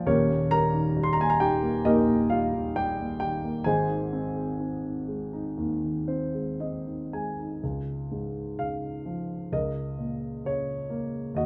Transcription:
0.06 3.62 D#1 medium
0.06 3.62 D#2 medium
0.06 0.47 C#4 medium
0.06 0.48 G4 medium
0.06 0.47 A#4 medium
0.06 0.52 C#5 medium
0.29 1.17 A#2 soft
0.51 0.95 G3 medium
0.51 1.02 A#4 medium
0.51 1.02 A#5 loud
0.73 1.39 D#3 medium
0.97 2.29 G3 medium
1.03 1.13 C6 loud
1.13 1.22 A#5 medium
1.18 1.84 A#2 soft
1.18 1.31 G#5 medium
1.30 1.39 A#5 medium
1.40 2.52 D#3 medium
1.40 1.83 G4 medium
1.40 1.86 G5 medium
1.62 3.39 A#3 medium
1.85 3.62 A#1 medium
1.85 2.05 A#2 medium
1.85 2.28 D#4 medium
1.85 2.28 G4 medium
1.85 2.28 A#4 medium
1.85 2.31 D#5 loud
2.07 2.97 A#2 medium
2.30 2.74 G3 medium
2.30 2.73 F4 medium
2.30 2.77 F5 medium
2.53 3.20 D#3 medium
2.76 3.63 G3 medium
2.76 3.19 G4 medium
2.76 3.18 G5 medium
2.99 3.64 A#2 soft
3.20 3.65 D#3 soft
3.20 3.63 G4 medium
3.20 3.67 G5 medium
3.44 3.66 A#3 medium
3.64 7.58 G#1 medium
3.64 7.59 G#2 medium
3.64 6.56 G#4 medium
3.64 6.06 C5 medium
3.64 6.56 D#5 medium
3.64 6.55 G#5 medium
3.89 4.82 D#3 soft
4.13 4.59 C4 medium
4.35 5.06 G#3 soft
4.60 6.06 C4 soft
4.83 5.56 D#3 soft
5.08 6.33 G#3 soft
5.33 7.34 D#4 medium
5.57 7.59 D#2 medium
5.57 5.82 D#3 medium
5.83 6.85 D#3 soft
6.08 6.59 C4 soft
6.08 6.56 C5 medium
6.34 7.12 G#3 soft
6.60 7.60 C4 soft
6.60 7.09 D#5 medium
6.86 7.60 D#3 soft
7.13 7.62 G#3 soft
7.13 7.60 G#5 medium
7.39 7.63 D#4 soft
7.64 9.49 C#2 medium
8.11 9.49 G#2 soft
8.59 9.50 C#3 soft
8.59 9.55 F5 medium
9.06 9.51 F3 soft
9.52 11.32 C#2 medium
9.52 11.32 A#4 medium
9.52 10.48 D#5 medium
9.99 11.32 A#2 soft
10.45 11.33 C#3 soft
10.45 11.33 C#5 medium
10.90 11.34 A#3 medium
11.35 11.46 D#2 medium
11.35 11.46 F#4 medium
11.35 11.46 D#5 medium

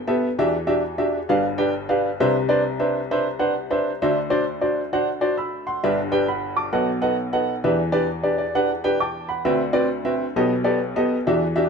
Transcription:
0.00 0.35 G1 medium
0.00 0.35 G2 medium
0.07 0.27 B3 medium
0.07 0.27 G4 medium
0.07 0.27 A4 medium
0.07 0.27 E5 medium
0.39 1.25 E2 medium
0.39 1.25 E3 medium
0.39 0.54 D4 medium
0.39 0.54 F#4 medium
0.39 0.54 G4 medium
0.39 0.54 E5 medium
0.67 0.81 D4 medium
0.67 0.81 F#4 medium
0.67 0.81 G4 medium
0.67 0.81 E5 medium
0.98 1.18 D4 medium
0.98 1.18 F#4 medium
0.98 1.18 G4 medium
0.98 1.18 E5 medium
1.29 2.16 G1 medium
1.29 2.16 G2 medium
1.29 1.44 D4 medium
1.29 1.45 G4 medium
1.29 1.45 B4 medium
1.29 1.45 F5 medium
1.58 1.72 D4 medium
1.58 1.72 G4 medium
1.58 1.72 B4 medium
1.58 1.72 G5 medium
1.89 2.08 D4 medium
1.89 2.08 G4 medium
1.89 2.08 B4 medium
1.89 2.08 F5 medium
2.20 3.97 C2 medium
2.20 3.98 C3 medium
2.20 2.35 D4 medium
2.20 2.35 B4 medium
2.20 2.36 C5 medium
2.20 2.35 E5 loud
2.49 2.62 D4 medium
2.49 2.62 B4 medium
2.49 2.62 C5 medium
2.49 2.62 D5 medium
2.80 2.99 D4 medium
2.80 2.99 B4 medium
2.80 2.99 C5 medium
2.80 2.99 E5 medium
3.11 3.26 D4 medium
3.11 3.26 B4 medium
3.11 3.26 C5 medium
3.11 3.26 E5 medium
3.39 3.53 D4 medium
3.39 3.53 B4 medium
3.39 3.53 C5 medium
3.39 3.53 F#5 medium
3.70 3.90 D4 medium
3.70 3.90 B4 medium
3.70 3.90 C5 medium
3.70 3.90 E5 medium
4.02 5.79 D2 medium
4.02 5.79 D3 medium
4.02 4.17 D4 medium
4.02 4.17 F#4 medium
4.02 4.17 C5 medium
4.02 4.17 E5 medium
4.30 4.44 D4 medium
4.30 4.44 F#4 medium
4.30 4.44 C5 medium
4.30 4.44 D5 medium
4.61 4.80 D4 medium
4.61 4.80 F#4 medium
4.61 4.81 C5 medium
4.61 4.80 D5 medium
4.93 5.08 D4 medium
4.93 5.08 F#4 medium
4.93 5.08 C5 medium
4.93 5.08 F#5 medium
5.21 5.34 D4 medium
5.21 5.34 F#4 medium
5.21 5.34 C5 medium
5.21 5.34 D5 medium
5.37 5.65 B5 medium
5.37 5.64 E6 medium
5.67 6.09 F#5 medium
5.67 6.09 C6 medium
5.84 6.70 G1 medium
5.84 6.70 G2 medium
5.84 5.98 D4 medium
5.84 5.98 G4 medium
5.84 5.98 B4 medium
5.84 5.98 E5 medium
6.12 6.25 D4 medium
6.12 6.25 G4 medium
6.12 6.25 B4 medium
6.12 6.25 G5 medium
6.28 6.55 F#5 medium
6.28 6.55 B5 medium
6.57 7.00 A5 medium
6.57 7.00 D6 medium
6.73 7.60 B1 medium
6.73 7.60 B2 medium
6.73 6.88 D#4 medium
6.73 6.88 A4 medium
6.73 6.88 B4 medium
6.73 6.88 F#5 medium
7.02 7.15 D#4 medium
7.02 7.15 A4 medium
7.02 7.15 B4 medium
7.02 7.15 F#5 medium
7.33 7.52 D#4 medium
7.33 7.52 A4 medium
7.33 7.52 B4 medium
7.33 7.52 F#5 medium
7.64 9.42 E2 medium
7.64 9.42 E3 medium
7.64 7.79 D4 medium
7.64 7.79 G4 medium
7.64 7.79 B4 medium
7.64 7.79 E5 medium
7.92 8.06 D4 medium
7.92 8.06 G4 medium
7.92 8.06 B4 medium
7.92 8.06 D5 medium
8.23 8.43 D4 medium
8.23 8.43 G4 medium
8.23 8.43 B4 medium
8.23 8.37 D5 medium
8.38 8.54 D5 medium
8.55 8.70 D4 medium
8.55 8.70 G4 medium
8.55 8.70 B4 medium
8.55 8.70 F#5 medium
8.84 8.97 D4 medium
8.84 8.97 G4 medium
8.84 8.97 B4 medium
8.84 8.97 G5 medium
9.00 9.27 G5 medium
9.00 9.28 A5 medium
9.00 9.27 D6 medium
9.29 9.72 F#5 medium
9.29 9.44 B5 medium
9.45 10.32 D2 medium
9.45 10.32 D3 medium
9.45 9.61 C4 medium
9.45 9.61 F#4 medium
9.45 9.61 B4 medium
9.45 9.61 E5 medium
9.73 9.87 C4 medium
9.73 9.87 F#4 medium
9.73 9.87 B4 medium
9.73 9.87 D5 medium
10.05 10.24 C4 medium
10.05 10.24 F#4 medium
10.05 10.24 B4 medium
10.05 10.24 E5 medium
10.36 11.23 B1 medium
10.36 11.23 B2 medium
10.36 10.52 B3 medium
10.36 10.52 G4 medium
10.36 10.52 A4 medium
10.36 10.52 D#5 medium
10.64 10.78 B3 medium
10.64 10.78 G4 medium
10.64 10.78 A4 medium
10.64 10.78 D5 medium
10.96 11.15 B3 medium
10.96 11.15 G4 medium
10.96 11.16 A4 medium
10.96 11.16 D#5 medium
11.27 11.69 E2 medium
11.27 11.69 E3 medium
11.27 11.42 D4 medium
11.27 11.43 F#4 medium
11.27 11.43 G4 medium
11.27 11.42 E5 medium
11.56 11.69 D4 medium
11.56 11.69 F#4 medium
11.56 11.69 G4 medium
11.56 11.69 E5 medium

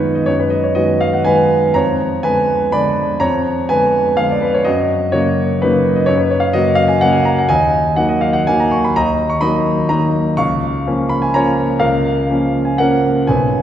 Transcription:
0.00 0.27 F#2 soft
0.00 0.31 D#3 soft
0.00 0.31 G#3 soft
0.00 0.32 B3 medium
0.00 0.14 D#4 medium
0.00 0.31 F4 medium
0.00 0.31 B4 medium
0.00 0.26 C#5 medium
0.00 0.15 D#5 medium
0.00 0.31 F5 medium
0.15 0.28 D#5 medium
0.26 0.75 F#2 medium
0.26 0.39 C#5 medium
0.40 0.52 B4 medium
0.50 0.64 D#5 medium
0.64 0.77 C#5 medium
0.75 1.23 D#3 soft
0.75 1.23 G#3 soft
0.75 1.23 B3 soft
0.75 1.00 F#4 medium
0.75 1.01 D#5 medium
1.01 1.14 F5 medium
1.13 1.27 F#5 medium
1.25 1.72 D#3 soft
1.25 1.72 G#3 soft
1.25 1.72 B3 medium
1.25 1.72 B4 medium
1.25 1.75 G#5 medium
1.74 2.22 F2 medium
1.74 2.20 C#5 medium
1.74 2.23 A#5 medium
2.23 2.70 D3 soft
2.23 2.70 G#3 soft
2.23 2.70 B3 soft
2.23 2.71 B4 medium
2.23 2.74 G#5 medium
2.72 3.18 D3 soft
2.72 3.18 G#3 soft
2.72 3.18 B3 soft
2.72 3.19 D5 medium
2.72 3.22 B5 medium
3.20 3.67 F2 medium
3.20 3.66 C#5 medium
3.20 3.69 A#5 medium
3.69 4.15 D3 soft
3.69 4.15 G#3 soft
3.69 4.15 B3 medium
3.69 4.15 B4 medium
3.69 4.18 G#5 medium
4.17 4.62 D3 soft
4.17 4.62 G#3 soft
4.17 4.62 B3 medium
4.17 4.30 F5 medium
4.31 4.43 D5 medium
4.42 4.54 B4 medium
4.54 4.66 C#5 medium
4.65 5.12 F#2 medium
4.65 5.10 F#4 medium
4.65 5.13 D#5 medium
5.12 5.58 C#3 soft
5.12 5.58 F#3 soft
5.12 5.58 A#3 medium
5.12 5.58 F#4 medium
5.12 5.61 C#5 medium
5.62 6.05 C#3 soft
5.62 6.05 F#3 soft
5.62 6.05 A#3 medium
5.62 5.95 D#4 medium
5.62 5.97 B4 medium
5.96 6.08 D#5 medium
6.06 6.54 F#2 medium
6.06 6.19 C#5 medium
6.17 6.30 B4 medium
6.31 6.43 C#5 medium
6.40 6.54 F5 medium
6.53 6.99 C#3 soft
6.53 7.00 F#3 soft
6.53 7.00 A#3 soft
6.53 6.77 F#4 medium
6.53 6.79 D#5 medium
6.75 6.90 F5 medium
6.88 7.02 G#5 medium
7.01 7.46 C#3 soft
7.01 7.46 F#3 soft
7.01 7.46 A#3 soft
7.01 7.15 F#5 medium
7.13 7.26 G#5 medium
7.25 7.38 A#5 medium
7.39 7.50 F#5 medium
7.49 7.95 D#2 medium
7.49 7.93 D#5 medium
7.49 7.96 G#5 medium
7.96 8.42 D#3 soft
7.96 8.42 F#3 soft
7.96 8.42 A#3 soft
7.96 8.09 F#5 medium
8.09 8.21 D#5 medium
8.21 8.33 F5 medium
8.33 8.46 F#5 medium
8.47 8.91 D#3 soft
8.47 8.91 F#3 soft
8.47 8.91 A#3 medium
8.47 8.59 G#5 medium
8.60 8.71 A#5 medium
8.71 8.83 C#6 medium
8.85 8.95 B5 medium
8.96 9.41 D#2 medium
8.96 9.28 D#5 medium
8.96 9.30 A#5 medium
9.30 9.41 C#6 medium
9.41 9.85 D#3 soft
9.41 9.86 F#3 medium
9.41 9.86 A#3 medium
9.41 9.86 D#5 medium
9.41 9.89 B5 medium
9.89 10.33 D#3 soft
9.89 10.34 F#3 soft
9.89 10.34 A#3 soft
9.89 10.34 D#5 medium
9.89 10.37 A#5 medium
10.37 10.85 C#2 medium
10.37 11.07 F5 medium
10.37 11.10 C#6 loud
10.87 11.31 F3 soft
10.87 11.32 A#3 soft
10.87 11.32 C#4 medium
11.09 11.22 B5 medium
11.22 11.34 G#5 medium
11.34 11.78 F3 soft
11.34 11.79 A#3 soft
11.34 11.79 C#4 medium
11.34 11.79 C#5 medium
11.34 11.82 A#5 medium
11.80 12.26 C#2 medium
11.80 12.60 A#4 medium
11.80 12.64 F5 medium
12.29 12.74 F3 soft
12.29 12.74 A#3 soft
12.29 12.74 C#4 soft
12.65 12.78 G#5 medium
12.78 13.25 F3 soft
12.78 13.25 A#3 soft
12.78 13.25 C#4 medium
12.78 13.25 A#4 medium
12.78 13.28 F#5 medium
13.27 13.62 B1 medium
13.27 13.62 B4 medium
13.27 13.62 G#5 medium

